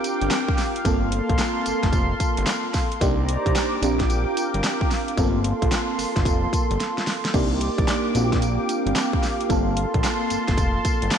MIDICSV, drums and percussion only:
0, 0, Header, 1, 2, 480
1, 0, Start_track
1, 0, Tempo, 540541
1, 753, Time_signature, 4, 2, 24, 8
1, 9928, End_track
2, 0, Start_track
2, 0, Title_t, "Drums"
2, 37, Note_on_c, 9, 54, 71
2, 38, Note_on_c, 9, 42, 76
2, 126, Note_off_c, 9, 54, 0
2, 127, Note_off_c, 9, 42, 0
2, 190, Note_on_c, 9, 42, 63
2, 272, Note_on_c, 9, 38, 127
2, 273, Note_off_c, 9, 42, 0
2, 273, Note_on_c, 9, 42, 83
2, 276, Note_on_c, 9, 54, 92
2, 280, Note_on_c, 9, 39, 102
2, 361, Note_off_c, 9, 38, 0
2, 362, Note_off_c, 9, 42, 0
2, 365, Note_off_c, 9, 54, 0
2, 369, Note_off_c, 9, 39, 0
2, 430, Note_on_c, 9, 36, 104
2, 514, Note_on_c, 9, 46, 64
2, 515, Note_on_c, 9, 54, 66
2, 517, Note_on_c, 9, 38, 66
2, 519, Note_off_c, 9, 36, 0
2, 602, Note_off_c, 9, 46, 0
2, 603, Note_off_c, 9, 54, 0
2, 605, Note_off_c, 9, 38, 0
2, 673, Note_on_c, 9, 42, 51
2, 755, Note_on_c, 9, 36, 123
2, 755, Note_on_c, 9, 54, 73
2, 756, Note_off_c, 9, 42, 0
2, 756, Note_on_c, 9, 42, 72
2, 844, Note_off_c, 9, 36, 0
2, 844, Note_off_c, 9, 42, 0
2, 844, Note_off_c, 9, 54, 0
2, 994, Note_on_c, 9, 42, 83
2, 1083, Note_off_c, 9, 42, 0
2, 1150, Note_on_c, 9, 36, 109
2, 1151, Note_on_c, 9, 42, 62
2, 1229, Note_off_c, 9, 42, 0
2, 1229, Note_on_c, 9, 42, 86
2, 1230, Note_on_c, 9, 38, 124
2, 1233, Note_on_c, 9, 54, 95
2, 1238, Note_on_c, 9, 39, 98
2, 1239, Note_off_c, 9, 36, 0
2, 1318, Note_off_c, 9, 42, 0
2, 1319, Note_off_c, 9, 38, 0
2, 1322, Note_off_c, 9, 54, 0
2, 1327, Note_off_c, 9, 39, 0
2, 1472, Note_on_c, 9, 42, 86
2, 1474, Note_on_c, 9, 54, 76
2, 1561, Note_off_c, 9, 42, 0
2, 1563, Note_off_c, 9, 54, 0
2, 1627, Note_on_c, 9, 42, 47
2, 1628, Note_on_c, 9, 36, 95
2, 1629, Note_on_c, 9, 38, 60
2, 1709, Note_off_c, 9, 36, 0
2, 1709, Note_on_c, 9, 36, 111
2, 1712, Note_off_c, 9, 42, 0
2, 1712, Note_on_c, 9, 42, 80
2, 1713, Note_on_c, 9, 54, 73
2, 1717, Note_off_c, 9, 38, 0
2, 1798, Note_off_c, 9, 36, 0
2, 1801, Note_off_c, 9, 42, 0
2, 1802, Note_off_c, 9, 54, 0
2, 1954, Note_on_c, 9, 36, 88
2, 1954, Note_on_c, 9, 42, 83
2, 1954, Note_on_c, 9, 54, 75
2, 2042, Note_off_c, 9, 54, 0
2, 2043, Note_off_c, 9, 36, 0
2, 2043, Note_off_c, 9, 42, 0
2, 2107, Note_on_c, 9, 42, 69
2, 2189, Note_on_c, 9, 38, 127
2, 2190, Note_off_c, 9, 42, 0
2, 2190, Note_on_c, 9, 42, 83
2, 2193, Note_on_c, 9, 54, 95
2, 2197, Note_on_c, 9, 39, 102
2, 2278, Note_off_c, 9, 38, 0
2, 2278, Note_off_c, 9, 42, 0
2, 2282, Note_off_c, 9, 54, 0
2, 2286, Note_off_c, 9, 39, 0
2, 2431, Note_on_c, 9, 46, 66
2, 2432, Note_on_c, 9, 54, 71
2, 2434, Note_on_c, 9, 38, 64
2, 2435, Note_on_c, 9, 36, 86
2, 2519, Note_off_c, 9, 46, 0
2, 2520, Note_off_c, 9, 54, 0
2, 2522, Note_off_c, 9, 38, 0
2, 2524, Note_off_c, 9, 36, 0
2, 2590, Note_on_c, 9, 42, 47
2, 2675, Note_on_c, 9, 36, 127
2, 2676, Note_off_c, 9, 42, 0
2, 2676, Note_on_c, 9, 42, 82
2, 2676, Note_on_c, 9, 54, 75
2, 2764, Note_off_c, 9, 36, 0
2, 2765, Note_off_c, 9, 42, 0
2, 2765, Note_off_c, 9, 54, 0
2, 2918, Note_on_c, 9, 42, 84
2, 3006, Note_off_c, 9, 42, 0
2, 3072, Note_on_c, 9, 36, 112
2, 3077, Note_on_c, 9, 42, 61
2, 3157, Note_off_c, 9, 42, 0
2, 3157, Note_on_c, 9, 42, 89
2, 3158, Note_on_c, 9, 38, 113
2, 3160, Note_off_c, 9, 36, 0
2, 3160, Note_on_c, 9, 54, 92
2, 3165, Note_on_c, 9, 39, 105
2, 3245, Note_off_c, 9, 42, 0
2, 3246, Note_off_c, 9, 38, 0
2, 3249, Note_off_c, 9, 54, 0
2, 3254, Note_off_c, 9, 39, 0
2, 3397, Note_on_c, 9, 42, 86
2, 3399, Note_on_c, 9, 54, 79
2, 3486, Note_off_c, 9, 42, 0
2, 3488, Note_off_c, 9, 54, 0
2, 3550, Note_on_c, 9, 36, 90
2, 3550, Note_on_c, 9, 42, 52
2, 3552, Note_on_c, 9, 38, 64
2, 3639, Note_off_c, 9, 36, 0
2, 3639, Note_off_c, 9, 42, 0
2, 3639, Note_on_c, 9, 42, 78
2, 3640, Note_on_c, 9, 54, 75
2, 3641, Note_off_c, 9, 38, 0
2, 3728, Note_off_c, 9, 42, 0
2, 3729, Note_off_c, 9, 54, 0
2, 3880, Note_on_c, 9, 54, 79
2, 3881, Note_on_c, 9, 42, 78
2, 3969, Note_off_c, 9, 54, 0
2, 3970, Note_off_c, 9, 42, 0
2, 4034, Note_on_c, 9, 42, 68
2, 4118, Note_off_c, 9, 42, 0
2, 4118, Note_on_c, 9, 38, 127
2, 4118, Note_on_c, 9, 42, 83
2, 4122, Note_on_c, 9, 54, 96
2, 4126, Note_on_c, 9, 39, 93
2, 4207, Note_off_c, 9, 38, 0
2, 4207, Note_off_c, 9, 42, 0
2, 4211, Note_off_c, 9, 54, 0
2, 4215, Note_off_c, 9, 39, 0
2, 4272, Note_on_c, 9, 36, 104
2, 4359, Note_on_c, 9, 46, 63
2, 4360, Note_on_c, 9, 54, 67
2, 4361, Note_off_c, 9, 36, 0
2, 4362, Note_on_c, 9, 38, 67
2, 4448, Note_off_c, 9, 46, 0
2, 4449, Note_off_c, 9, 54, 0
2, 4451, Note_off_c, 9, 38, 0
2, 4512, Note_on_c, 9, 42, 47
2, 4595, Note_off_c, 9, 42, 0
2, 4595, Note_on_c, 9, 36, 115
2, 4595, Note_on_c, 9, 42, 72
2, 4595, Note_on_c, 9, 54, 68
2, 4684, Note_off_c, 9, 36, 0
2, 4684, Note_off_c, 9, 42, 0
2, 4684, Note_off_c, 9, 54, 0
2, 4834, Note_on_c, 9, 42, 92
2, 4923, Note_off_c, 9, 42, 0
2, 4991, Note_on_c, 9, 36, 109
2, 4993, Note_on_c, 9, 42, 63
2, 5076, Note_off_c, 9, 42, 0
2, 5076, Note_on_c, 9, 42, 78
2, 5077, Note_on_c, 9, 38, 127
2, 5079, Note_on_c, 9, 54, 93
2, 5080, Note_off_c, 9, 36, 0
2, 5084, Note_on_c, 9, 39, 96
2, 5164, Note_off_c, 9, 42, 0
2, 5165, Note_off_c, 9, 38, 0
2, 5168, Note_off_c, 9, 54, 0
2, 5173, Note_off_c, 9, 39, 0
2, 5318, Note_on_c, 9, 46, 88
2, 5320, Note_on_c, 9, 54, 81
2, 5407, Note_off_c, 9, 46, 0
2, 5409, Note_off_c, 9, 54, 0
2, 5471, Note_on_c, 9, 36, 93
2, 5473, Note_on_c, 9, 42, 49
2, 5475, Note_on_c, 9, 38, 64
2, 5553, Note_off_c, 9, 36, 0
2, 5553, Note_on_c, 9, 36, 109
2, 5559, Note_off_c, 9, 42, 0
2, 5559, Note_on_c, 9, 42, 80
2, 5559, Note_on_c, 9, 54, 71
2, 5564, Note_off_c, 9, 38, 0
2, 5642, Note_off_c, 9, 36, 0
2, 5647, Note_off_c, 9, 42, 0
2, 5648, Note_off_c, 9, 54, 0
2, 5797, Note_on_c, 9, 36, 94
2, 5802, Note_on_c, 9, 42, 79
2, 5802, Note_on_c, 9, 54, 79
2, 5886, Note_off_c, 9, 36, 0
2, 5891, Note_off_c, 9, 42, 0
2, 5891, Note_off_c, 9, 54, 0
2, 5956, Note_on_c, 9, 42, 68
2, 6041, Note_off_c, 9, 42, 0
2, 6041, Note_on_c, 9, 42, 85
2, 6042, Note_on_c, 9, 38, 59
2, 6130, Note_off_c, 9, 42, 0
2, 6131, Note_off_c, 9, 38, 0
2, 6198, Note_on_c, 9, 38, 75
2, 6277, Note_on_c, 9, 46, 67
2, 6279, Note_off_c, 9, 38, 0
2, 6279, Note_on_c, 9, 38, 96
2, 6365, Note_off_c, 9, 46, 0
2, 6368, Note_off_c, 9, 38, 0
2, 6436, Note_on_c, 9, 42, 52
2, 6437, Note_on_c, 9, 38, 99
2, 6517, Note_on_c, 9, 36, 120
2, 6520, Note_on_c, 9, 54, 69
2, 6521, Note_on_c, 9, 49, 79
2, 6525, Note_off_c, 9, 38, 0
2, 6525, Note_off_c, 9, 42, 0
2, 6606, Note_off_c, 9, 36, 0
2, 6609, Note_off_c, 9, 49, 0
2, 6609, Note_off_c, 9, 54, 0
2, 6758, Note_on_c, 9, 42, 88
2, 6846, Note_off_c, 9, 42, 0
2, 6911, Note_on_c, 9, 36, 111
2, 6914, Note_on_c, 9, 42, 63
2, 6996, Note_off_c, 9, 42, 0
2, 6996, Note_on_c, 9, 42, 78
2, 6997, Note_on_c, 9, 38, 127
2, 7000, Note_off_c, 9, 36, 0
2, 7000, Note_on_c, 9, 54, 92
2, 7005, Note_on_c, 9, 39, 95
2, 7085, Note_off_c, 9, 42, 0
2, 7086, Note_off_c, 9, 38, 0
2, 7088, Note_off_c, 9, 54, 0
2, 7094, Note_off_c, 9, 39, 0
2, 7236, Note_on_c, 9, 42, 81
2, 7238, Note_on_c, 9, 54, 79
2, 7325, Note_off_c, 9, 42, 0
2, 7327, Note_off_c, 9, 54, 0
2, 7391, Note_on_c, 9, 36, 87
2, 7395, Note_on_c, 9, 42, 52
2, 7397, Note_on_c, 9, 38, 66
2, 7477, Note_off_c, 9, 42, 0
2, 7477, Note_on_c, 9, 42, 77
2, 7478, Note_on_c, 9, 54, 69
2, 7480, Note_off_c, 9, 36, 0
2, 7485, Note_off_c, 9, 38, 0
2, 7566, Note_off_c, 9, 42, 0
2, 7567, Note_off_c, 9, 54, 0
2, 7716, Note_on_c, 9, 54, 77
2, 7717, Note_on_c, 9, 42, 77
2, 7805, Note_off_c, 9, 54, 0
2, 7806, Note_off_c, 9, 42, 0
2, 7873, Note_on_c, 9, 42, 62
2, 7953, Note_on_c, 9, 38, 127
2, 7954, Note_off_c, 9, 42, 0
2, 7954, Note_on_c, 9, 42, 82
2, 7957, Note_on_c, 9, 54, 98
2, 7961, Note_on_c, 9, 39, 101
2, 8042, Note_off_c, 9, 38, 0
2, 8042, Note_off_c, 9, 42, 0
2, 8046, Note_off_c, 9, 54, 0
2, 8050, Note_off_c, 9, 39, 0
2, 8110, Note_on_c, 9, 36, 96
2, 8195, Note_on_c, 9, 46, 64
2, 8196, Note_on_c, 9, 54, 71
2, 8198, Note_on_c, 9, 38, 64
2, 8199, Note_off_c, 9, 36, 0
2, 8284, Note_off_c, 9, 46, 0
2, 8285, Note_off_c, 9, 54, 0
2, 8287, Note_off_c, 9, 38, 0
2, 8352, Note_on_c, 9, 42, 47
2, 8435, Note_off_c, 9, 42, 0
2, 8435, Note_on_c, 9, 36, 113
2, 8435, Note_on_c, 9, 42, 78
2, 8435, Note_on_c, 9, 54, 75
2, 8524, Note_off_c, 9, 36, 0
2, 8524, Note_off_c, 9, 42, 0
2, 8524, Note_off_c, 9, 54, 0
2, 8673, Note_on_c, 9, 42, 91
2, 8762, Note_off_c, 9, 42, 0
2, 8829, Note_on_c, 9, 42, 61
2, 8830, Note_on_c, 9, 36, 108
2, 8913, Note_off_c, 9, 42, 0
2, 8913, Note_on_c, 9, 42, 92
2, 8914, Note_on_c, 9, 38, 118
2, 8917, Note_on_c, 9, 54, 97
2, 8918, Note_off_c, 9, 36, 0
2, 8922, Note_on_c, 9, 39, 102
2, 9002, Note_off_c, 9, 42, 0
2, 9003, Note_off_c, 9, 38, 0
2, 9005, Note_off_c, 9, 54, 0
2, 9011, Note_off_c, 9, 39, 0
2, 9149, Note_on_c, 9, 42, 86
2, 9151, Note_on_c, 9, 54, 79
2, 9238, Note_off_c, 9, 42, 0
2, 9240, Note_off_c, 9, 54, 0
2, 9306, Note_on_c, 9, 42, 51
2, 9308, Note_on_c, 9, 38, 63
2, 9309, Note_on_c, 9, 36, 91
2, 9390, Note_off_c, 9, 36, 0
2, 9390, Note_on_c, 9, 36, 117
2, 9393, Note_off_c, 9, 42, 0
2, 9393, Note_on_c, 9, 42, 78
2, 9394, Note_on_c, 9, 54, 74
2, 9397, Note_off_c, 9, 38, 0
2, 9479, Note_off_c, 9, 36, 0
2, 9482, Note_off_c, 9, 42, 0
2, 9482, Note_off_c, 9, 54, 0
2, 9632, Note_on_c, 9, 42, 76
2, 9632, Note_on_c, 9, 54, 80
2, 9634, Note_on_c, 9, 36, 97
2, 9720, Note_off_c, 9, 54, 0
2, 9721, Note_off_c, 9, 42, 0
2, 9723, Note_off_c, 9, 36, 0
2, 9787, Note_on_c, 9, 42, 63
2, 9867, Note_off_c, 9, 42, 0
2, 9867, Note_on_c, 9, 38, 125
2, 9867, Note_on_c, 9, 42, 83
2, 9871, Note_on_c, 9, 54, 94
2, 9875, Note_on_c, 9, 39, 97
2, 9928, Note_off_c, 9, 38, 0
2, 9928, Note_off_c, 9, 39, 0
2, 9928, Note_off_c, 9, 42, 0
2, 9928, Note_off_c, 9, 54, 0
2, 9928, End_track
0, 0, End_of_file